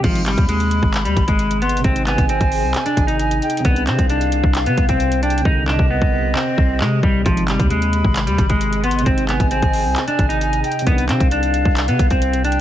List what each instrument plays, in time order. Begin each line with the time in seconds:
0.00 808-style bass G#1, grand piano C3, ambient pad C3 G#4 D#5, clean electric guitar F3, kick, closed hi-hat, crash
0.04 grand piano G#3
0.09 grand piano D#4
0.15 closed hi-hat
0.26 clean electric guitar G3, flute B5, clap, closed hi-hat
0.38 808-style bass D#2, kick, closed hi-hat
0.49 clean electric guitar G#3, closed hi-hat
0.60 closed hi-hat
0.71 closed hi-hat
0.83 808-style bass G#1, kick
0.94 clap, closed hi-hat
1.05 808-style bass D#2, clean electric guitar G3, closed hi-hat
1.17 808-style bass G#1, kick, closed hi-hat
1.28 clean electric guitar G#3, kick, closed hi-hat
1.39 closed hi-hat
1.51 closed hi-hat
1.62 clean electric guitar B3, flute C6, closed hi-hat
1.69 closed hi-hat
1.77 grand piano C3, closed hi-hat
1.84 808-style bass G#1, grand piano G#3, clean electric guitar C4, kick, closed hi-hat
1.88 grand piano D#4
1.96 closed hi-hat
2.06 clean electric guitar B3, flute G#5, clap, closed hi-hat
2.18 808-style bass G#1, kick, closed hi-hat
2.29 clean electric guitar C4, closed hi-hat
2.41 808-style bass G#1, kick, closed hi-hat
2.52 open hi-hat
2.63 808-style bass C2
2.74 clap, closed hi-hat
2.86 clean electric guitar D4, closed hi-hat
2.97 808-style bass G#1, kick, closed hi-hat
3.07 clean electric guitar D#4, closed hi-hat
3.19 flute G#5, closed hi-hat
3.31 closed hi-hat
3.42 flute G5, closed hi-hat
3.50 closed hi-hat
3.57 grand piano C3, closed hi-hat
3.65 808-style bass C2, grand piano D#3, clean electric guitar B3, ambient pad G4, kick, closed hi-hat
3.69 grand piano D4
3.76 closed hi-hat
3.87 808-style bass C3, clean electric guitar C4, flute F5, clap, closed hi-hat
3.99 808-style bass C2, kick, closed hi-hat
4.10 clean electric guitar D4, closed hi-hat
4.21 closed hi-hat
4.32 closed hi-hat
4.44 808-style bass C2, kick
4.55 clap, closed hi-hat
4.66 808-style bass C3, clean electric guitar B3, closed hi-hat
4.78 808-style bass C2, kick, closed hi-hat
4.89 clean electric guitar C4, kick, closed hi-hat
5.00 closed hi-hat
5.12 closed hi-hat
5.23 clean electric guitar D4, flute G5, closed hi-hat
5.30 closed hi-hat
5.38 grand piano C3, closed hi-hat
5.45 808-style bass C2, grand piano D#3, clean electric guitar D#4, kick
5.50 grand piano D3
5.68 clean electric guitar D4, flute D#5, clap
5.79 808-style bass C2, kick
5.90 clean electric guitar B3
6.02 808-style bass C2, kick
6.35 clean electric guitar C4, clap
6.58 808-style bass C2, kick
6.81 808-style bass C3, clean electric guitar G#3, clap
7.03 808-style bass C2, clean electric guitar G3, kick
7.21 grand piano C3
7.26 808-style bass G#1, clean electric guitar F3, grand piano G#3, ambient pad G#4 D#5, kick, closed hi-hat
7.31 grand piano D#4
7.37 closed hi-hat
7.48 clean electric guitar G3, flute B5, clap, closed hi-hat
7.59 808-style bass D#2, kick, closed hi-hat
7.70 clean electric guitar G#3, closed hi-hat
7.82 closed hi-hat
7.93 closed hi-hat
8.05 808-style bass G#1, kick
8.16 clap, closed hi-hat
8.27 808-style bass D#2, clean electric guitar G3, closed hi-hat
8.38 808-style bass G#1, kick, closed hi-hat
8.49 clean electric guitar G#3, kick, closed hi-hat
8.61 closed hi-hat
8.73 closed hi-hat
8.84 clean electric guitar B3, flute C6, closed hi-hat
8.91 closed hi-hat
8.99 grand piano C3, closed hi-hat
9.06 808-style bass G#1, grand piano G#3, clean electric guitar C4, kick, closed hi-hat
9.10 grand piano D#4
9.18 closed hi-hat
9.28 clean electric guitar B3, flute G#5, clap, closed hi-hat
9.40 808-style bass G#1, kick, closed hi-hat
9.51 clean electric guitar C4, closed hi-hat
9.62 808-style bass G#1, kick, closed hi-hat
9.73 open hi-hat
9.85 808-style bass C2
9.96 clap, closed hi-hat
10.08 clean electric guitar D4, closed hi-hat
10.19 808-style bass G#1, kick, closed hi-hat
10.29 clean electric guitar D#4, closed hi-hat
10.41 flute G#5, closed hi-hat
10.53 closed hi-hat
10.64 flute G5, closed hi-hat
10.72 closed hi-hat
10.79 grand piano C3, closed hi-hat
10.86 808-style bass C2, ambient pad C3 G4, grand piano D#3, clean electric guitar B3, kick, closed hi-hat
10.91 grand piano D4
10.98 closed hi-hat
11.09 808-style bass C3, clean electric guitar C4, flute F5, clap, closed hi-hat
11.20 808-style bass C2, kick, closed hi-hat
11.31 clean electric guitar D4, closed hi-hat
11.43 closed hi-hat
11.54 closed hi-hat
11.65 808-style bass C2, kick
11.77 clap, closed hi-hat
11.88 808-style bass C3, clean electric guitar B3, closed hi-hat
11.99 808-style bass C2, kick, closed hi-hat
12.10 808-style bass C2, clean electric guitar C4, kick, closed hi-hat
12.22 closed hi-hat
12.33 closed hi-hat
12.44 clean electric guitar D4, flute G5, closed hi-hat
12.52 closed hi-hat